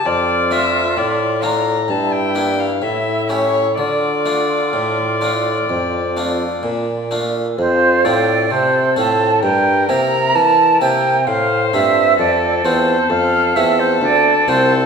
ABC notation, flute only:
X:1
M:4/4
L:1/16
Q:1/4=65
K:Dm
V:1 name="Flute"
F6 z2 E4 E4 | F12- F2 z2 | [K:F] c2 d2 c2 a2 g2 b2 a2 g2 | f2 e2 d2 c2 f2 e c d2 c2 |]